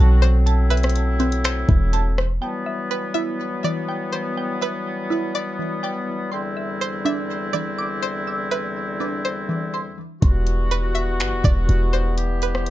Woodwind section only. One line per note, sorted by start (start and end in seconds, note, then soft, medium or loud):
0.00 2.25 F#3 medium
0.00 2.25 A3 medium
0.00 2.25 C4 medium
0.00 0.43 F#4 medium
0.47 2.25 E4 medium
2.42 6.28 E3 medium
2.42 6.28 F#3 medium
2.42 10.05 G3 medium
2.42 6.28 B3 medium
6.32 10.05 E2 medium
6.32 10.05 D3 medium
6.32 10.05 C4 medium
6.32 10.05 E4 medium
10.22 12.70 E3 medium
10.22 12.70 G3 medium
10.22 12.70 B3 medium
10.22 12.15 F#4 medium
12.18 12.70 G4 medium